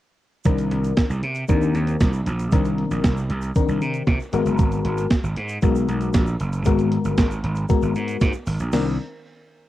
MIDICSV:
0, 0, Header, 1, 4, 480
1, 0, Start_track
1, 0, Tempo, 517241
1, 419, Time_signature, 4, 2, 24, 8
1, 8991, End_track
2, 0, Start_track
2, 0, Title_t, "FM electric piano"
2, 0, Program_c, 0, 5
2, 416, Note_on_c, 0, 51, 80
2, 420, Note_on_c, 0, 60, 80
2, 423, Note_on_c, 0, 62, 80
2, 425, Note_on_c, 0, 70, 100
2, 974, Note_off_c, 0, 51, 0
2, 976, Note_off_c, 0, 60, 0
2, 978, Note_off_c, 0, 62, 0
2, 979, Note_off_c, 0, 70, 0
2, 1377, Note_on_c, 0, 51, 87
2, 1380, Note_on_c, 0, 60, 76
2, 1382, Note_on_c, 0, 62, 83
2, 1384, Note_on_c, 0, 70, 92
2, 1935, Note_off_c, 0, 51, 0
2, 1936, Note_off_c, 0, 60, 0
2, 1937, Note_off_c, 0, 62, 0
2, 1939, Note_off_c, 0, 70, 0
2, 2339, Note_on_c, 0, 51, 86
2, 2341, Note_on_c, 0, 60, 73
2, 2343, Note_on_c, 0, 62, 81
2, 2345, Note_on_c, 0, 70, 94
2, 2896, Note_off_c, 0, 51, 0
2, 2897, Note_off_c, 0, 60, 0
2, 2898, Note_off_c, 0, 62, 0
2, 2899, Note_off_c, 0, 70, 0
2, 3300, Note_on_c, 0, 51, 84
2, 3301, Note_on_c, 0, 60, 78
2, 3305, Note_on_c, 0, 62, 76
2, 3306, Note_on_c, 0, 70, 96
2, 3856, Note_off_c, 0, 51, 0
2, 3857, Note_off_c, 0, 60, 0
2, 3859, Note_off_c, 0, 62, 0
2, 3859, Note_off_c, 0, 70, 0
2, 4019, Note_on_c, 0, 56, 91
2, 4022, Note_on_c, 0, 59, 83
2, 4025, Note_on_c, 0, 66, 89
2, 4026, Note_on_c, 0, 70, 101
2, 4787, Note_off_c, 0, 56, 0
2, 4788, Note_off_c, 0, 59, 0
2, 4790, Note_off_c, 0, 66, 0
2, 4790, Note_off_c, 0, 70, 0
2, 5217, Note_on_c, 0, 56, 89
2, 5219, Note_on_c, 0, 59, 74
2, 5222, Note_on_c, 0, 66, 82
2, 5225, Note_on_c, 0, 70, 89
2, 5775, Note_off_c, 0, 56, 0
2, 5776, Note_off_c, 0, 59, 0
2, 5777, Note_off_c, 0, 66, 0
2, 5779, Note_off_c, 0, 70, 0
2, 6177, Note_on_c, 0, 56, 91
2, 6179, Note_on_c, 0, 59, 77
2, 6182, Note_on_c, 0, 66, 83
2, 6184, Note_on_c, 0, 70, 100
2, 6735, Note_off_c, 0, 56, 0
2, 6736, Note_off_c, 0, 59, 0
2, 6737, Note_off_c, 0, 66, 0
2, 6738, Note_off_c, 0, 70, 0
2, 7136, Note_on_c, 0, 56, 78
2, 7138, Note_on_c, 0, 59, 78
2, 7141, Note_on_c, 0, 66, 78
2, 7142, Note_on_c, 0, 70, 98
2, 7694, Note_off_c, 0, 56, 0
2, 7695, Note_off_c, 0, 59, 0
2, 7697, Note_off_c, 0, 66, 0
2, 7697, Note_off_c, 0, 70, 0
2, 8102, Note_on_c, 0, 51, 83
2, 8102, Note_on_c, 0, 60, 78
2, 8102, Note_on_c, 0, 62, 79
2, 8102, Note_on_c, 0, 70, 89
2, 8324, Note_off_c, 0, 51, 0
2, 8324, Note_off_c, 0, 60, 0
2, 8324, Note_off_c, 0, 62, 0
2, 8324, Note_off_c, 0, 70, 0
2, 8991, End_track
3, 0, Start_track
3, 0, Title_t, "Slap bass"
3, 0, Program_c, 1, 36
3, 420, Note_on_c, 1, 36, 100
3, 611, Note_off_c, 1, 36, 0
3, 660, Note_on_c, 1, 36, 107
3, 852, Note_off_c, 1, 36, 0
3, 1020, Note_on_c, 1, 36, 90
3, 1115, Note_off_c, 1, 36, 0
3, 1141, Note_on_c, 1, 48, 93
3, 1332, Note_off_c, 1, 48, 0
3, 1384, Note_on_c, 1, 39, 80
3, 1574, Note_off_c, 1, 39, 0
3, 1621, Note_on_c, 1, 39, 85
3, 1812, Note_off_c, 1, 39, 0
3, 1863, Note_on_c, 1, 36, 102
3, 2053, Note_off_c, 1, 36, 0
3, 2101, Note_on_c, 1, 34, 91
3, 2292, Note_off_c, 1, 34, 0
3, 2341, Note_on_c, 1, 36, 97
3, 2628, Note_off_c, 1, 36, 0
3, 2699, Note_on_c, 1, 34, 77
3, 2795, Note_off_c, 1, 34, 0
3, 2823, Note_on_c, 1, 36, 82
3, 3013, Note_off_c, 1, 36, 0
3, 3060, Note_on_c, 1, 36, 75
3, 3251, Note_off_c, 1, 36, 0
3, 3420, Note_on_c, 1, 36, 83
3, 3516, Note_off_c, 1, 36, 0
3, 3539, Note_on_c, 1, 48, 86
3, 3731, Note_off_c, 1, 48, 0
3, 3780, Note_on_c, 1, 48, 96
3, 3876, Note_off_c, 1, 48, 0
3, 4019, Note_on_c, 1, 32, 105
3, 4115, Note_off_c, 1, 32, 0
3, 4138, Note_on_c, 1, 30, 84
3, 4259, Note_off_c, 1, 30, 0
3, 4259, Note_on_c, 1, 32, 99
3, 4451, Note_off_c, 1, 32, 0
3, 4498, Note_on_c, 1, 32, 94
3, 4690, Note_off_c, 1, 32, 0
3, 4858, Note_on_c, 1, 32, 90
3, 4955, Note_off_c, 1, 32, 0
3, 4980, Note_on_c, 1, 44, 101
3, 5172, Note_off_c, 1, 44, 0
3, 5220, Note_on_c, 1, 35, 91
3, 5412, Note_off_c, 1, 35, 0
3, 5458, Note_on_c, 1, 35, 97
3, 5650, Note_off_c, 1, 35, 0
3, 5700, Note_on_c, 1, 34, 96
3, 5892, Note_off_c, 1, 34, 0
3, 5940, Note_on_c, 1, 30, 87
3, 6131, Note_off_c, 1, 30, 0
3, 6179, Note_on_c, 1, 32, 89
3, 6467, Note_off_c, 1, 32, 0
3, 6540, Note_on_c, 1, 31, 81
3, 6635, Note_off_c, 1, 31, 0
3, 6663, Note_on_c, 1, 32, 75
3, 6853, Note_off_c, 1, 32, 0
3, 6899, Note_on_c, 1, 32, 80
3, 7091, Note_off_c, 1, 32, 0
3, 7260, Note_on_c, 1, 32, 93
3, 7355, Note_off_c, 1, 32, 0
3, 7379, Note_on_c, 1, 44, 90
3, 7571, Note_off_c, 1, 44, 0
3, 7622, Note_on_c, 1, 44, 107
3, 7717, Note_off_c, 1, 44, 0
3, 7858, Note_on_c, 1, 32, 96
3, 7954, Note_off_c, 1, 32, 0
3, 7979, Note_on_c, 1, 34, 89
3, 8075, Note_off_c, 1, 34, 0
3, 8099, Note_on_c, 1, 36, 85
3, 8322, Note_off_c, 1, 36, 0
3, 8991, End_track
4, 0, Start_track
4, 0, Title_t, "Drums"
4, 410, Note_on_c, 9, 82, 70
4, 420, Note_on_c, 9, 42, 81
4, 421, Note_on_c, 9, 36, 111
4, 503, Note_off_c, 9, 82, 0
4, 513, Note_off_c, 9, 36, 0
4, 513, Note_off_c, 9, 42, 0
4, 539, Note_on_c, 9, 82, 39
4, 541, Note_on_c, 9, 42, 38
4, 631, Note_off_c, 9, 82, 0
4, 633, Note_off_c, 9, 42, 0
4, 661, Note_on_c, 9, 42, 69
4, 754, Note_off_c, 9, 42, 0
4, 780, Note_on_c, 9, 82, 52
4, 784, Note_on_c, 9, 42, 49
4, 873, Note_off_c, 9, 82, 0
4, 877, Note_off_c, 9, 42, 0
4, 900, Note_on_c, 9, 42, 93
4, 902, Note_on_c, 9, 38, 116
4, 902, Note_on_c, 9, 82, 62
4, 904, Note_on_c, 9, 36, 120
4, 993, Note_off_c, 9, 42, 0
4, 995, Note_off_c, 9, 38, 0
4, 995, Note_off_c, 9, 82, 0
4, 996, Note_off_c, 9, 36, 0
4, 1024, Note_on_c, 9, 82, 58
4, 1116, Note_off_c, 9, 82, 0
4, 1142, Note_on_c, 9, 42, 69
4, 1235, Note_off_c, 9, 42, 0
4, 1251, Note_on_c, 9, 82, 48
4, 1262, Note_on_c, 9, 42, 52
4, 1344, Note_off_c, 9, 82, 0
4, 1355, Note_off_c, 9, 42, 0
4, 1377, Note_on_c, 9, 82, 80
4, 1384, Note_on_c, 9, 36, 110
4, 1384, Note_on_c, 9, 42, 76
4, 1470, Note_off_c, 9, 82, 0
4, 1477, Note_off_c, 9, 36, 0
4, 1477, Note_off_c, 9, 42, 0
4, 1501, Note_on_c, 9, 82, 61
4, 1594, Note_off_c, 9, 82, 0
4, 1621, Note_on_c, 9, 82, 42
4, 1624, Note_on_c, 9, 42, 61
4, 1713, Note_off_c, 9, 82, 0
4, 1716, Note_off_c, 9, 42, 0
4, 1738, Note_on_c, 9, 42, 46
4, 1746, Note_on_c, 9, 82, 53
4, 1831, Note_off_c, 9, 42, 0
4, 1839, Note_off_c, 9, 82, 0
4, 1860, Note_on_c, 9, 82, 82
4, 1861, Note_on_c, 9, 42, 97
4, 1862, Note_on_c, 9, 36, 121
4, 1864, Note_on_c, 9, 38, 107
4, 1953, Note_off_c, 9, 82, 0
4, 1954, Note_off_c, 9, 42, 0
4, 1955, Note_off_c, 9, 36, 0
4, 1957, Note_off_c, 9, 38, 0
4, 1976, Note_on_c, 9, 82, 58
4, 2068, Note_off_c, 9, 82, 0
4, 2101, Note_on_c, 9, 42, 74
4, 2102, Note_on_c, 9, 82, 49
4, 2193, Note_off_c, 9, 42, 0
4, 2195, Note_off_c, 9, 82, 0
4, 2221, Note_on_c, 9, 82, 60
4, 2222, Note_on_c, 9, 42, 50
4, 2314, Note_off_c, 9, 82, 0
4, 2315, Note_off_c, 9, 42, 0
4, 2332, Note_on_c, 9, 82, 77
4, 2341, Note_on_c, 9, 36, 112
4, 2342, Note_on_c, 9, 42, 100
4, 2425, Note_off_c, 9, 82, 0
4, 2434, Note_off_c, 9, 36, 0
4, 2435, Note_off_c, 9, 42, 0
4, 2457, Note_on_c, 9, 82, 36
4, 2463, Note_on_c, 9, 42, 37
4, 2550, Note_off_c, 9, 82, 0
4, 2556, Note_off_c, 9, 42, 0
4, 2582, Note_on_c, 9, 42, 73
4, 2674, Note_off_c, 9, 42, 0
4, 2700, Note_on_c, 9, 82, 53
4, 2703, Note_on_c, 9, 42, 51
4, 2792, Note_off_c, 9, 82, 0
4, 2796, Note_off_c, 9, 42, 0
4, 2819, Note_on_c, 9, 42, 85
4, 2821, Note_on_c, 9, 38, 108
4, 2823, Note_on_c, 9, 36, 117
4, 2823, Note_on_c, 9, 82, 69
4, 2912, Note_off_c, 9, 42, 0
4, 2914, Note_off_c, 9, 38, 0
4, 2916, Note_off_c, 9, 36, 0
4, 2916, Note_off_c, 9, 82, 0
4, 2941, Note_on_c, 9, 82, 56
4, 3034, Note_off_c, 9, 82, 0
4, 3060, Note_on_c, 9, 42, 75
4, 3153, Note_off_c, 9, 42, 0
4, 3171, Note_on_c, 9, 82, 55
4, 3182, Note_on_c, 9, 42, 54
4, 3263, Note_off_c, 9, 82, 0
4, 3275, Note_off_c, 9, 42, 0
4, 3296, Note_on_c, 9, 82, 68
4, 3302, Note_on_c, 9, 36, 106
4, 3303, Note_on_c, 9, 42, 84
4, 3389, Note_off_c, 9, 82, 0
4, 3395, Note_off_c, 9, 36, 0
4, 3395, Note_off_c, 9, 42, 0
4, 3420, Note_on_c, 9, 82, 58
4, 3512, Note_off_c, 9, 82, 0
4, 3541, Note_on_c, 9, 82, 43
4, 3544, Note_on_c, 9, 42, 59
4, 3633, Note_off_c, 9, 82, 0
4, 3637, Note_off_c, 9, 42, 0
4, 3656, Note_on_c, 9, 42, 45
4, 3664, Note_on_c, 9, 82, 52
4, 3749, Note_off_c, 9, 42, 0
4, 3756, Note_off_c, 9, 82, 0
4, 3776, Note_on_c, 9, 82, 74
4, 3778, Note_on_c, 9, 42, 93
4, 3780, Note_on_c, 9, 36, 118
4, 3781, Note_on_c, 9, 38, 114
4, 3869, Note_off_c, 9, 82, 0
4, 3871, Note_off_c, 9, 42, 0
4, 3873, Note_off_c, 9, 36, 0
4, 3874, Note_off_c, 9, 38, 0
4, 3895, Note_on_c, 9, 82, 53
4, 3988, Note_off_c, 9, 82, 0
4, 4019, Note_on_c, 9, 42, 81
4, 4019, Note_on_c, 9, 82, 53
4, 4111, Note_off_c, 9, 82, 0
4, 4112, Note_off_c, 9, 42, 0
4, 4138, Note_on_c, 9, 82, 58
4, 4141, Note_on_c, 9, 42, 51
4, 4231, Note_off_c, 9, 82, 0
4, 4234, Note_off_c, 9, 42, 0
4, 4251, Note_on_c, 9, 82, 65
4, 4260, Note_on_c, 9, 36, 117
4, 4261, Note_on_c, 9, 42, 90
4, 4344, Note_off_c, 9, 82, 0
4, 4353, Note_off_c, 9, 36, 0
4, 4354, Note_off_c, 9, 42, 0
4, 4376, Note_on_c, 9, 82, 42
4, 4381, Note_on_c, 9, 42, 36
4, 4469, Note_off_c, 9, 82, 0
4, 4474, Note_off_c, 9, 42, 0
4, 4501, Note_on_c, 9, 42, 75
4, 4593, Note_off_c, 9, 42, 0
4, 4618, Note_on_c, 9, 82, 51
4, 4623, Note_on_c, 9, 42, 52
4, 4711, Note_off_c, 9, 82, 0
4, 4716, Note_off_c, 9, 42, 0
4, 4738, Note_on_c, 9, 42, 89
4, 4740, Note_on_c, 9, 38, 109
4, 4742, Note_on_c, 9, 36, 112
4, 4742, Note_on_c, 9, 82, 74
4, 4831, Note_off_c, 9, 42, 0
4, 4833, Note_off_c, 9, 38, 0
4, 4834, Note_off_c, 9, 82, 0
4, 4835, Note_off_c, 9, 36, 0
4, 4862, Note_on_c, 9, 82, 59
4, 4954, Note_off_c, 9, 82, 0
4, 4979, Note_on_c, 9, 42, 75
4, 5071, Note_off_c, 9, 42, 0
4, 5089, Note_on_c, 9, 82, 55
4, 5099, Note_on_c, 9, 42, 52
4, 5182, Note_off_c, 9, 82, 0
4, 5192, Note_off_c, 9, 42, 0
4, 5214, Note_on_c, 9, 82, 72
4, 5219, Note_on_c, 9, 42, 70
4, 5221, Note_on_c, 9, 36, 124
4, 5306, Note_off_c, 9, 82, 0
4, 5311, Note_off_c, 9, 42, 0
4, 5314, Note_off_c, 9, 36, 0
4, 5338, Note_on_c, 9, 82, 60
4, 5431, Note_off_c, 9, 82, 0
4, 5457, Note_on_c, 9, 82, 45
4, 5461, Note_on_c, 9, 42, 58
4, 5550, Note_off_c, 9, 82, 0
4, 5554, Note_off_c, 9, 42, 0
4, 5575, Note_on_c, 9, 42, 50
4, 5580, Note_on_c, 9, 82, 48
4, 5667, Note_off_c, 9, 42, 0
4, 5673, Note_off_c, 9, 82, 0
4, 5694, Note_on_c, 9, 82, 83
4, 5697, Note_on_c, 9, 42, 104
4, 5700, Note_on_c, 9, 36, 111
4, 5700, Note_on_c, 9, 38, 108
4, 5787, Note_off_c, 9, 82, 0
4, 5790, Note_off_c, 9, 42, 0
4, 5793, Note_off_c, 9, 36, 0
4, 5793, Note_off_c, 9, 38, 0
4, 5812, Note_on_c, 9, 82, 53
4, 5905, Note_off_c, 9, 82, 0
4, 5937, Note_on_c, 9, 42, 71
4, 5938, Note_on_c, 9, 82, 51
4, 6029, Note_off_c, 9, 42, 0
4, 6031, Note_off_c, 9, 82, 0
4, 6055, Note_on_c, 9, 82, 54
4, 6059, Note_on_c, 9, 42, 54
4, 6148, Note_off_c, 9, 82, 0
4, 6152, Note_off_c, 9, 42, 0
4, 6168, Note_on_c, 9, 82, 75
4, 6179, Note_on_c, 9, 42, 96
4, 6180, Note_on_c, 9, 36, 106
4, 6261, Note_off_c, 9, 82, 0
4, 6272, Note_off_c, 9, 36, 0
4, 6272, Note_off_c, 9, 42, 0
4, 6296, Note_on_c, 9, 82, 43
4, 6299, Note_on_c, 9, 42, 40
4, 6389, Note_off_c, 9, 82, 0
4, 6392, Note_off_c, 9, 42, 0
4, 6419, Note_on_c, 9, 42, 69
4, 6512, Note_off_c, 9, 42, 0
4, 6537, Note_on_c, 9, 82, 54
4, 6543, Note_on_c, 9, 42, 49
4, 6630, Note_off_c, 9, 82, 0
4, 6636, Note_off_c, 9, 42, 0
4, 6660, Note_on_c, 9, 42, 95
4, 6660, Note_on_c, 9, 82, 66
4, 6662, Note_on_c, 9, 38, 110
4, 6663, Note_on_c, 9, 36, 118
4, 6753, Note_off_c, 9, 42, 0
4, 6753, Note_off_c, 9, 82, 0
4, 6755, Note_off_c, 9, 38, 0
4, 6756, Note_off_c, 9, 36, 0
4, 6782, Note_on_c, 9, 82, 57
4, 6785, Note_on_c, 9, 42, 33
4, 6875, Note_off_c, 9, 82, 0
4, 6877, Note_off_c, 9, 42, 0
4, 6902, Note_on_c, 9, 42, 70
4, 6995, Note_off_c, 9, 42, 0
4, 7008, Note_on_c, 9, 82, 47
4, 7024, Note_on_c, 9, 42, 56
4, 7101, Note_off_c, 9, 82, 0
4, 7117, Note_off_c, 9, 42, 0
4, 7133, Note_on_c, 9, 82, 70
4, 7143, Note_on_c, 9, 36, 119
4, 7144, Note_on_c, 9, 42, 74
4, 7226, Note_off_c, 9, 82, 0
4, 7236, Note_off_c, 9, 36, 0
4, 7237, Note_off_c, 9, 42, 0
4, 7256, Note_on_c, 9, 82, 62
4, 7349, Note_off_c, 9, 82, 0
4, 7377, Note_on_c, 9, 82, 43
4, 7385, Note_on_c, 9, 42, 64
4, 7470, Note_off_c, 9, 82, 0
4, 7477, Note_off_c, 9, 42, 0
4, 7497, Note_on_c, 9, 42, 54
4, 7501, Note_on_c, 9, 82, 51
4, 7590, Note_off_c, 9, 42, 0
4, 7594, Note_off_c, 9, 82, 0
4, 7615, Note_on_c, 9, 82, 81
4, 7621, Note_on_c, 9, 36, 116
4, 7621, Note_on_c, 9, 42, 105
4, 7623, Note_on_c, 9, 38, 105
4, 7708, Note_off_c, 9, 82, 0
4, 7713, Note_off_c, 9, 42, 0
4, 7714, Note_off_c, 9, 36, 0
4, 7716, Note_off_c, 9, 38, 0
4, 7731, Note_on_c, 9, 82, 57
4, 7823, Note_off_c, 9, 82, 0
4, 7855, Note_on_c, 9, 82, 52
4, 7861, Note_on_c, 9, 46, 81
4, 7947, Note_off_c, 9, 82, 0
4, 7953, Note_off_c, 9, 46, 0
4, 7974, Note_on_c, 9, 82, 57
4, 7982, Note_on_c, 9, 42, 54
4, 8066, Note_off_c, 9, 82, 0
4, 8075, Note_off_c, 9, 42, 0
4, 8096, Note_on_c, 9, 82, 87
4, 8101, Note_on_c, 9, 38, 95
4, 8101, Note_on_c, 9, 49, 83
4, 8188, Note_off_c, 9, 82, 0
4, 8194, Note_off_c, 9, 38, 0
4, 8194, Note_off_c, 9, 49, 0
4, 8991, End_track
0, 0, End_of_file